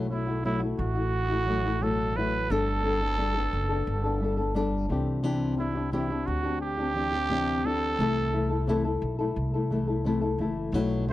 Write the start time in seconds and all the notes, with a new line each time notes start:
Already playing: B1 B2 E4 F#4
0.09 F#3 A3 E4 F#4
0.27 A3 E4 F#4
0.44 B2 F#3 A3 E4 F#4
0.59 A3 E4 F#4
0.79 A1 F#4
0.95 A3 E4 F#4
1.29 A3 E4 F#4
1.46 F#3 A3 E4 F#4
1.65 A3 E4 F#4
1.81 B2 F#3 A3 E4 F#4 A4
2.15 F#3 A3 E4 F#4 B4
2.50 G1 G3 B3 D4 A4
2.83 G3 B3 D4 A4
3.00 B3 D4 A4
3.17 G3 B3 D4 A4
3.35 B3 D4 A4
3.53 F#1
3.69 B3 D4 A4
3.87 G1
4.04 B3 D4 A4
4.21 G3 B3 D4 A4
4.37 B3 D4 A4
4.55 G3 B3 D4 A4
4.89 C2 E3 C4 D4 G4
5.23 C3 E3 C4 D4 G4
5.57 E3 C4 D4 E4 G4
5.75 C4 D4 G4
5.92 C3 E3 C4 D4 E4 G4
6.10 C4 D4 G4
6.27 D2 F#4
6.43 C4 D4 G4
6.62 G4
6.78 C4 D4 G4
6.94 E3 C4 D4 G4
7.12 C4 D4 G4
7.30 C3 E3 C4 D4 G4
7.63 E3 C4 D4 G4 A4
7.99 C2 C3 E3 A3 E4 A4
8.32 E3 A3 E4 A4
8.50 A3 E4 A4
8.67 C3 E3 A3 E4 A4
8.84 A3 E4 A4
9.02 B1
9.19 A3 E4 A4
9.36 C2
9.54 A3 E4 A4
9.71 E3 A3 E4 A4
9.88 A3 E4 A4
10.05 C3 E3 A3 E4 A4
10.21 A3 E4 A4
10.38 F#1 E3 A3 E4 A4
10.72 B1 B2 F#3 A3 E4 F#4
11.07 F#3 A3 E4